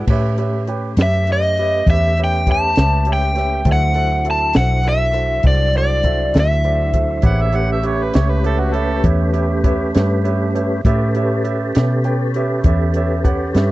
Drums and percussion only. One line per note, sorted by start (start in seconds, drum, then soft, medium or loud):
0.07 kick medium
0.07 crash medium
0.38 closed hi-hat soft
0.67 closed hi-hat soft
0.97 snare medium
0.97 closed hi-hat medium
1.27 closed hi-hat soft
1.57 closed hi-hat soft
1.87 kick medium
1.87 closed hi-hat medium
2.17 closed hi-hat medium
2.47 kick medium
2.47 closed hi-hat soft
2.76 snare medium
2.76 closed hi-hat medium
3.05 closed hi-hat soft
3.35 snare soft
3.35 closed hi-hat soft
3.65 kick medium
3.65 closed hi-hat medium
3.94 closed hi-hat soft
4.25 closed hi-hat soft
4.53 snare medium
4.53 closed hi-hat medium
4.83 closed hi-hat soft
5.14 closed hi-hat soft
5.43 kick medium
5.43 closed hi-hat medium
5.74 closed hi-hat soft
6.03 kick medium
6.03 closed hi-hat medium
6.34 snare medium
6.34 closed hi-hat medium
6.64 closed hi-hat soft
6.93 kick medium
6.93 closed hi-hat soft
7.22 kick medium
7.22 closed hi-hat medium
7.52 closed hi-hat soft
7.83 closed hi-hat soft
8.13 snare medium
8.13 closed hi-hat medium
8.44 closed hi-hat soft
8.74 closed hi-hat soft
9.04 kick medium
9.04 closed hi-hat medium
9.34 closed hi-hat soft
9.64 kick medium
9.64 closed hi-hat soft
9.94 snare medium
9.94 closed hi-hat medium
10.25 closed hi-hat soft
10.55 closed hi-hat soft
10.85 kick medium
10.85 closed hi-hat medium
11.15 closed hi-hat soft
11.45 closed hi-hat soft
11.75 snare medium
11.75 closed hi-hat medium
12.04 closed hi-hat soft
12.34 closed hi-hat soft
12.64 kick medium
12.64 closed hi-hat medium
12.94 closed hi-hat medium
13.25 kick medium
13.25 closed hi-hat soft
13.55 snare medium
13.55 closed hi-hat medium